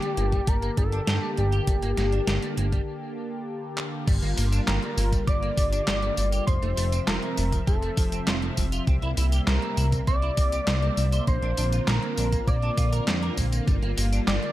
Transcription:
Already playing: D3 A#3 G4 A5
0.02 G3, closed hi-hat
0.17 G1 A#3, closed hi-hat
0.32 G3, kick, closed hi-hat
0.47 G1 G3 A#4, kick, closed hi-hat
0.62 A#3, closed hi-hat
0.77 G1 G3 A4, kick, closed hi-hat
0.92 D4, closed hi-hat
1.07 G2 G4, snare, closed hi-hat
1.22 G3
1.37 G1 G3 G4, closed hi-hat
1.52 G4, closed hi-hat
1.67 G1 G3, kick, closed hi-hat
1.82 G1 A#3, closed hi-hat
1.97 G1 A#3, snare, closed hi-hat
2.12 D4, closed hi-hat
2.27 G1 G4, snare, closed hi-hat
2.42 G3, closed hi-hat
2.57 G1 A#3, closed hi-hat
2.72 G3, kick, closed hi-hat
3.77 clap
4.07 G1 D3 G3 A#3 F4, kick, closed hi-hat, crash, tambourine
4.22 G1 A#3, closed hi-hat
4.37 G1 A#3, open hi-hat, tambourine
4.52 D4, closed hi-hat, tambourine
4.67 G1 G4 A#4 A#5, snare, clap, closed hi-hat, tambourine
4.82 G3, closed hi-hat
4.97 G1 A#3, open hi-hat, tambourine
5.12 G3, kick, closed hi-hat, tambourine
5.27 G1 G3 D5 D6, kick, closed hi-hat, tambourine
5.42 A#3, closed hi-hat
5.57 G1 G3, kick, open hi-hat, tambourine
5.72 D4, closed hi-hat, tambourine
5.87 G1 G4, snare, clap, closed hi-hat, tambourine
6.02 G3, closed hi-hat
6.17 G1 G3, open hi-hat, tambourine
6.32 G4, closed hi-hat, tambourine
6.47 F1 C3 F3 C4 C5 E5 C6, kick, closed hi-hat, tambourine
6.62 F1 A3, closed hi-hat
6.77 F1 A3, open hi-hat, tambourine
6.92 C4, closed hi-hat, tambourine
7.07 F1 F4 A#4 A#5, snare, clap, closed hi-hat, tambourine
7.22 F3, closed hi-hat
7.37 F1 A3, open hi-hat, tambourine
7.52 F3, kick, closed hi-hat, tambourine
7.67 F1 F3 A4 A5, kick, closed hi-hat, tambourine
7.82 A3, closed hi-hat
7.97 F1 F3, kick, open hi-hat, tambourine
8.12 C4, closed hi-hat, tambourine
8.27 F1 F4, snare, clap, closed hi-hat, tambourine
8.42 F3, closed hi-hat
8.57 F1 F3, kick, open hi-hat, tambourine
8.72 F4, closed hi-hat, tambourine
8.87 C2 G3 A#3 C4, kick, closed hi-hat, tambourine
9.02 C2 E4, closed hi-hat
9.17 C2 E4, open hi-hat, tambourine
9.32 G4, closed hi-hat, tambourine
9.47 C2 A#4 C5 A#5, snare, clap, closed hi-hat, tambourine
9.62 C4, closed hi-hat
9.77 C2 E4, open hi-hat, tambourine
9.92 C4, kick, closed hi-hat, tambourine
10.07 C2 C4 D5 D6, kick, closed hi-hat, tambourine
10.22 E4, closed hi-hat
10.37 C2 C4, kick, open hi-hat, tambourine
10.52 G4, closed hi-hat, tambourine
10.67 C2 C5, snare, clap, closed hi-hat, tambourine
10.82 C4, closed hi-hat
10.97 C2 C4, open hi-hat, tambourine
11.12 C5, closed hi-hat, tambourine
11.27 A#1 D3 A#3 C4 F4 C5 C6, kick, closed hi-hat, tambourine
11.42 A#1 D4, closed hi-hat
11.57 A#1 D4, open hi-hat, tambourine
11.72 F4, closed hi-hat, tambourine
11.88 A#1 A#4 A#5, snare, clap, closed hi-hat, tambourine
12.02 A#3, closed hi-hat
12.18 A#1 D4, open hi-hat, tambourine
12.32 A#3, kick, closed hi-hat, tambourine
12.48 A#1 A#3 D5 D6, kick, closed hi-hat, tambourine
12.62 D4, closed hi-hat
12.77 A#1 F4, kick, open hi-hat, tambourine
12.92 A#4, closed hi-hat, tambourine
13.07 F2 A#3, snare, clap, closed hi-hat, tambourine
13.22 A#4, closed hi-hat
13.37 A#1 A#3, kick, open hi-hat, tambourine
13.52 A#3, closed hi-hat, tambourine
13.67 G1 G3, kick, closed hi-hat, tambourine
13.82 G1 A#3, closed hi-hat
13.97 G1 A#3, open hi-hat, tambourine
14.12 D4, closed hi-hat, tambourine
14.27 G1 G4 D5 D6, snare, clap, closed hi-hat, tambourine
14.42 G3, closed hi-hat

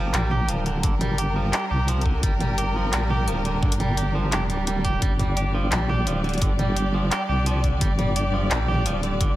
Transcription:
Already playing: G1 F3 G3 D4 G4 A#4
0.14 A#1 G3, clap, closed hi-hat
0.31 G4, mid tom
0.49 D1 F3, closed hi-hat
0.66 D3, closed hi-hat
0.83 G1 D3, kick, closed hi-hat
1.01 G3, closed hi-hat, mid tom
1.18 G4, closed hi-hat
1.36 F3
1.53 G4, clap, closed hi-hat
1.71 C2 G4
1.88 F3, closed hi-hat
2.01 closed hi-hat
2.06 D3, kick
2.23 G1 G3, kick, closed hi-hat
2.40 G3, closed hi-hat, mid tom
2.58 G4, closed hi-hat
2.76 F3
2.93 A#1 G3, clap, closed hi-hat
3.10 G4, mid tom
3.28 D1 F3, closed hi-hat
3.45 D3, closed hi-hat
3.63 G1 D3, kick
3.72 closed hi-hat
3.80 G3, closed hi-hat, mid tom
3.97 G4, closed hi-hat
4.15 F3
4.32 F1 G4, clap, closed hi-hat
4.50 D1 G3, closed hi-hat
4.67 G3, closed hi-hat
4.85 G4, kick, closed hi-hat
5.02 G1 G3 D5, kick, closed hi-hat
5.19 G3, closed hi-hat, mid tom
5.37 G4, closed hi-hat
5.54 F3
5.72 A#1 G3, clap, closed hi-hat
5.89 G4, mid tom
6.07 D1 F3, closed hi-hat
6.24 D3, closed hi-hat
6.29 closed hi-hat
6.34 closed hi-hat
6.38 closed hi-hat
6.42 G1 D3, kick, closed hi-hat
6.59 G3, closed hi-hat, mid tom
6.76 G4, closed hi-hat
6.94 F3
7.11 G4, clap, closed hi-hat
7.29 C2 G4
7.46 F3, closed hi-hat
7.64 D3, kick, closed hi-hat
7.81 G1 G3, kick, closed hi-hat
7.99 G3, closed hi-hat, mid tom
8.16 G4, closed hi-hat
8.34 F3
8.51 A#1 G3, clap, closed hi-hat
8.68 G4, mid tom
8.71 mid tom
8.74 mid tom
8.86 D1 F3, closed hi-hat
9.03 D3, closed hi-hat
9.21 G1 D3, kick, closed hi-hat

